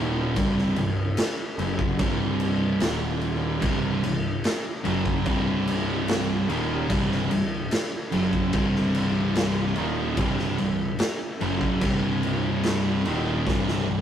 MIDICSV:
0, 0, Header, 1, 4, 480
1, 0, Start_track
1, 0, Tempo, 816327
1, 213, Time_signature, 4, 2, 24, 8
1, 4533, Tempo, 823045
1, 8209, End_track
2, 0, Start_track
2, 0, Title_t, "Distorted electric guitar"
2, 0, Program_c, 0, 30
2, 0, Note_on_c, 0, 39, 86
2, 0, Note_on_c, 0, 46, 95
2, 0, Note_on_c, 0, 51, 107
2, 204, Note_off_c, 0, 39, 0
2, 205, Note_off_c, 0, 46, 0
2, 206, Note_off_c, 0, 51, 0
2, 207, Note_on_c, 0, 36, 102
2, 210, Note_on_c, 0, 43, 106
2, 212, Note_on_c, 0, 48, 122
2, 442, Note_off_c, 0, 36, 0
2, 444, Note_off_c, 0, 43, 0
2, 445, Note_off_c, 0, 48, 0
2, 461, Note_on_c, 0, 36, 69
2, 462, Note_on_c, 0, 43, 77
2, 648, Note_off_c, 0, 36, 0
2, 648, Note_off_c, 0, 43, 0
2, 936, Note_on_c, 0, 42, 106
2, 938, Note_on_c, 0, 49, 106
2, 941, Note_on_c, 0, 54, 101
2, 1166, Note_off_c, 0, 42, 0
2, 1167, Note_off_c, 0, 49, 0
2, 1168, Note_off_c, 0, 54, 0
2, 1180, Note_on_c, 0, 36, 89
2, 1184, Note_on_c, 0, 43, 92
2, 1185, Note_on_c, 0, 48, 104
2, 1647, Note_off_c, 0, 36, 0
2, 1649, Note_off_c, 0, 43, 0
2, 1650, Note_off_c, 0, 48, 0
2, 1652, Note_on_c, 0, 39, 82
2, 1658, Note_on_c, 0, 46, 86
2, 1660, Note_on_c, 0, 51, 97
2, 2123, Note_off_c, 0, 39, 0
2, 2126, Note_off_c, 0, 46, 0
2, 2127, Note_off_c, 0, 51, 0
2, 2130, Note_on_c, 0, 36, 96
2, 2137, Note_on_c, 0, 43, 101
2, 2139, Note_on_c, 0, 48, 115
2, 2362, Note_off_c, 0, 36, 0
2, 2363, Note_off_c, 0, 43, 0
2, 2367, Note_off_c, 0, 48, 0
2, 2370, Note_on_c, 0, 36, 58
2, 2370, Note_on_c, 0, 43, 62
2, 2562, Note_off_c, 0, 36, 0
2, 2562, Note_off_c, 0, 43, 0
2, 2844, Note_on_c, 0, 42, 96
2, 2848, Note_on_c, 0, 49, 98
2, 2852, Note_on_c, 0, 54, 103
2, 3080, Note_off_c, 0, 42, 0
2, 3082, Note_off_c, 0, 49, 0
2, 3084, Note_off_c, 0, 54, 0
2, 3088, Note_on_c, 0, 36, 85
2, 3089, Note_on_c, 0, 43, 105
2, 3092, Note_on_c, 0, 48, 95
2, 3804, Note_off_c, 0, 36, 0
2, 3804, Note_off_c, 0, 43, 0
2, 3805, Note_off_c, 0, 48, 0
2, 3812, Note_on_c, 0, 39, 92
2, 3813, Note_on_c, 0, 46, 87
2, 3818, Note_on_c, 0, 51, 98
2, 4045, Note_off_c, 0, 39, 0
2, 4046, Note_off_c, 0, 46, 0
2, 4048, Note_off_c, 0, 51, 0
2, 4050, Note_on_c, 0, 36, 111
2, 4053, Note_on_c, 0, 43, 116
2, 4059, Note_on_c, 0, 48, 123
2, 4285, Note_off_c, 0, 36, 0
2, 4286, Note_off_c, 0, 43, 0
2, 4289, Note_off_c, 0, 48, 0
2, 4295, Note_on_c, 0, 36, 63
2, 4296, Note_on_c, 0, 43, 71
2, 4487, Note_off_c, 0, 36, 0
2, 4487, Note_off_c, 0, 43, 0
2, 4774, Note_on_c, 0, 42, 97
2, 4777, Note_on_c, 0, 49, 98
2, 4780, Note_on_c, 0, 54, 93
2, 5006, Note_off_c, 0, 42, 0
2, 5007, Note_off_c, 0, 49, 0
2, 5009, Note_off_c, 0, 54, 0
2, 5017, Note_on_c, 0, 36, 91
2, 5019, Note_on_c, 0, 43, 91
2, 5019, Note_on_c, 0, 48, 112
2, 5726, Note_off_c, 0, 36, 0
2, 5727, Note_off_c, 0, 43, 0
2, 5727, Note_off_c, 0, 48, 0
2, 5733, Note_on_c, 0, 39, 87
2, 5735, Note_on_c, 0, 46, 99
2, 5736, Note_on_c, 0, 51, 107
2, 5965, Note_off_c, 0, 39, 0
2, 5966, Note_off_c, 0, 46, 0
2, 5966, Note_off_c, 0, 51, 0
2, 5974, Note_on_c, 0, 36, 100
2, 5977, Note_on_c, 0, 43, 104
2, 5979, Note_on_c, 0, 48, 122
2, 6205, Note_off_c, 0, 36, 0
2, 6205, Note_off_c, 0, 43, 0
2, 6208, Note_off_c, 0, 48, 0
2, 6211, Note_on_c, 0, 36, 61
2, 6212, Note_on_c, 0, 43, 74
2, 6403, Note_off_c, 0, 36, 0
2, 6403, Note_off_c, 0, 43, 0
2, 6689, Note_on_c, 0, 42, 99
2, 6695, Note_on_c, 0, 49, 97
2, 6696, Note_on_c, 0, 54, 105
2, 6923, Note_off_c, 0, 42, 0
2, 6926, Note_off_c, 0, 49, 0
2, 6926, Note_off_c, 0, 54, 0
2, 6935, Note_on_c, 0, 36, 86
2, 6939, Note_on_c, 0, 43, 91
2, 6943, Note_on_c, 0, 48, 105
2, 7647, Note_off_c, 0, 36, 0
2, 7649, Note_off_c, 0, 43, 0
2, 7651, Note_off_c, 0, 48, 0
2, 7659, Note_on_c, 0, 39, 90
2, 7660, Note_on_c, 0, 46, 92
2, 7664, Note_on_c, 0, 51, 96
2, 7889, Note_off_c, 0, 39, 0
2, 7889, Note_off_c, 0, 46, 0
2, 7891, Note_off_c, 0, 51, 0
2, 7901, Note_on_c, 0, 36, 98
2, 7904, Note_on_c, 0, 43, 101
2, 7906, Note_on_c, 0, 48, 107
2, 8130, Note_off_c, 0, 36, 0
2, 8132, Note_off_c, 0, 43, 0
2, 8133, Note_off_c, 0, 48, 0
2, 8140, Note_on_c, 0, 36, 58
2, 8144, Note_on_c, 0, 43, 73
2, 8209, Note_off_c, 0, 36, 0
2, 8209, Note_off_c, 0, 43, 0
2, 8209, End_track
3, 0, Start_track
3, 0, Title_t, "Picked electric bass"
3, 0, Program_c, 1, 34
3, 0, Note_on_c, 1, 27, 99
3, 196, Note_off_c, 1, 27, 0
3, 213, Note_on_c, 1, 24, 100
3, 436, Note_off_c, 1, 24, 0
3, 448, Note_on_c, 1, 24, 83
3, 672, Note_off_c, 1, 24, 0
3, 926, Note_on_c, 1, 30, 87
3, 1151, Note_off_c, 1, 30, 0
3, 1171, Note_on_c, 1, 24, 98
3, 1626, Note_off_c, 1, 24, 0
3, 1648, Note_on_c, 1, 27, 85
3, 2105, Note_off_c, 1, 27, 0
3, 2129, Note_on_c, 1, 24, 104
3, 2352, Note_off_c, 1, 24, 0
3, 2372, Note_on_c, 1, 24, 79
3, 2594, Note_off_c, 1, 24, 0
3, 2855, Note_on_c, 1, 30, 95
3, 3076, Note_off_c, 1, 30, 0
3, 3091, Note_on_c, 1, 24, 92
3, 3789, Note_off_c, 1, 24, 0
3, 3815, Note_on_c, 1, 27, 92
3, 4037, Note_off_c, 1, 27, 0
3, 4057, Note_on_c, 1, 24, 99
3, 4279, Note_off_c, 1, 24, 0
3, 4296, Note_on_c, 1, 24, 79
3, 4519, Note_off_c, 1, 24, 0
3, 4779, Note_on_c, 1, 30, 91
3, 4999, Note_off_c, 1, 30, 0
3, 5013, Note_on_c, 1, 24, 97
3, 5708, Note_off_c, 1, 24, 0
3, 5734, Note_on_c, 1, 27, 94
3, 5955, Note_off_c, 1, 27, 0
3, 5970, Note_on_c, 1, 24, 102
3, 6194, Note_off_c, 1, 24, 0
3, 6219, Note_on_c, 1, 24, 80
3, 6438, Note_off_c, 1, 24, 0
3, 6693, Note_on_c, 1, 30, 94
3, 6915, Note_off_c, 1, 30, 0
3, 6928, Note_on_c, 1, 24, 99
3, 7627, Note_off_c, 1, 24, 0
3, 7652, Note_on_c, 1, 27, 101
3, 7876, Note_off_c, 1, 27, 0
3, 7892, Note_on_c, 1, 24, 94
3, 8116, Note_off_c, 1, 24, 0
3, 8136, Note_on_c, 1, 24, 77
3, 8209, Note_off_c, 1, 24, 0
3, 8209, End_track
4, 0, Start_track
4, 0, Title_t, "Drums"
4, 213, Note_on_c, 9, 49, 88
4, 214, Note_on_c, 9, 36, 115
4, 272, Note_off_c, 9, 49, 0
4, 273, Note_off_c, 9, 36, 0
4, 341, Note_on_c, 9, 38, 33
4, 400, Note_off_c, 9, 38, 0
4, 449, Note_on_c, 9, 49, 65
4, 507, Note_off_c, 9, 49, 0
4, 689, Note_on_c, 9, 49, 94
4, 696, Note_on_c, 9, 38, 123
4, 747, Note_off_c, 9, 49, 0
4, 755, Note_off_c, 9, 38, 0
4, 934, Note_on_c, 9, 49, 70
4, 992, Note_off_c, 9, 49, 0
4, 1051, Note_on_c, 9, 36, 90
4, 1110, Note_off_c, 9, 36, 0
4, 1171, Note_on_c, 9, 36, 112
4, 1171, Note_on_c, 9, 49, 75
4, 1230, Note_off_c, 9, 36, 0
4, 1230, Note_off_c, 9, 49, 0
4, 1410, Note_on_c, 9, 49, 69
4, 1468, Note_off_c, 9, 49, 0
4, 1648, Note_on_c, 9, 49, 73
4, 1656, Note_on_c, 9, 38, 118
4, 1707, Note_off_c, 9, 49, 0
4, 1715, Note_off_c, 9, 38, 0
4, 1890, Note_on_c, 9, 49, 51
4, 1949, Note_off_c, 9, 49, 0
4, 2128, Note_on_c, 9, 49, 75
4, 2130, Note_on_c, 9, 36, 114
4, 2187, Note_off_c, 9, 49, 0
4, 2189, Note_off_c, 9, 36, 0
4, 2373, Note_on_c, 9, 49, 61
4, 2432, Note_off_c, 9, 49, 0
4, 2611, Note_on_c, 9, 49, 84
4, 2618, Note_on_c, 9, 38, 117
4, 2670, Note_off_c, 9, 49, 0
4, 2677, Note_off_c, 9, 38, 0
4, 2851, Note_on_c, 9, 49, 64
4, 2910, Note_off_c, 9, 49, 0
4, 2973, Note_on_c, 9, 36, 94
4, 3031, Note_off_c, 9, 36, 0
4, 3091, Note_on_c, 9, 49, 80
4, 3093, Note_on_c, 9, 36, 116
4, 3150, Note_off_c, 9, 49, 0
4, 3152, Note_off_c, 9, 36, 0
4, 3337, Note_on_c, 9, 49, 72
4, 3396, Note_off_c, 9, 49, 0
4, 3576, Note_on_c, 9, 49, 84
4, 3584, Note_on_c, 9, 38, 121
4, 3635, Note_off_c, 9, 49, 0
4, 3642, Note_off_c, 9, 38, 0
4, 3819, Note_on_c, 9, 49, 58
4, 3878, Note_off_c, 9, 49, 0
4, 4056, Note_on_c, 9, 49, 93
4, 4057, Note_on_c, 9, 36, 112
4, 4115, Note_off_c, 9, 36, 0
4, 4115, Note_off_c, 9, 49, 0
4, 4185, Note_on_c, 9, 38, 33
4, 4243, Note_off_c, 9, 38, 0
4, 4297, Note_on_c, 9, 49, 64
4, 4356, Note_off_c, 9, 49, 0
4, 4535, Note_on_c, 9, 49, 86
4, 4542, Note_on_c, 9, 38, 120
4, 4593, Note_off_c, 9, 49, 0
4, 4601, Note_off_c, 9, 38, 0
4, 4774, Note_on_c, 9, 49, 70
4, 4832, Note_off_c, 9, 49, 0
4, 4895, Note_on_c, 9, 36, 92
4, 4953, Note_off_c, 9, 36, 0
4, 5010, Note_on_c, 9, 49, 83
4, 5014, Note_on_c, 9, 36, 120
4, 5069, Note_off_c, 9, 49, 0
4, 5072, Note_off_c, 9, 36, 0
4, 5142, Note_on_c, 9, 38, 30
4, 5200, Note_off_c, 9, 38, 0
4, 5254, Note_on_c, 9, 49, 68
4, 5312, Note_off_c, 9, 49, 0
4, 5492, Note_on_c, 9, 49, 82
4, 5500, Note_on_c, 9, 38, 125
4, 5551, Note_off_c, 9, 49, 0
4, 5558, Note_off_c, 9, 38, 0
4, 5727, Note_on_c, 9, 49, 56
4, 5785, Note_off_c, 9, 49, 0
4, 5968, Note_on_c, 9, 49, 80
4, 5970, Note_on_c, 9, 36, 111
4, 6026, Note_off_c, 9, 49, 0
4, 6028, Note_off_c, 9, 36, 0
4, 6096, Note_on_c, 9, 38, 36
4, 6154, Note_off_c, 9, 38, 0
4, 6210, Note_on_c, 9, 49, 57
4, 6268, Note_off_c, 9, 49, 0
4, 6444, Note_on_c, 9, 49, 80
4, 6452, Note_on_c, 9, 38, 127
4, 6502, Note_off_c, 9, 49, 0
4, 6510, Note_off_c, 9, 38, 0
4, 6690, Note_on_c, 9, 49, 62
4, 6749, Note_off_c, 9, 49, 0
4, 6808, Note_on_c, 9, 36, 91
4, 6866, Note_off_c, 9, 36, 0
4, 6926, Note_on_c, 9, 49, 86
4, 6928, Note_on_c, 9, 36, 110
4, 6984, Note_off_c, 9, 49, 0
4, 6986, Note_off_c, 9, 36, 0
4, 7169, Note_on_c, 9, 49, 65
4, 7228, Note_off_c, 9, 49, 0
4, 7406, Note_on_c, 9, 49, 82
4, 7413, Note_on_c, 9, 38, 108
4, 7464, Note_off_c, 9, 49, 0
4, 7472, Note_off_c, 9, 38, 0
4, 7650, Note_on_c, 9, 49, 60
4, 7708, Note_off_c, 9, 49, 0
4, 7890, Note_on_c, 9, 36, 118
4, 7899, Note_on_c, 9, 38, 72
4, 7948, Note_off_c, 9, 36, 0
4, 7957, Note_off_c, 9, 38, 0
4, 8016, Note_on_c, 9, 38, 60
4, 8075, Note_off_c, 9, 38, 0
4, 8209, End_track
0, 0, End_of_file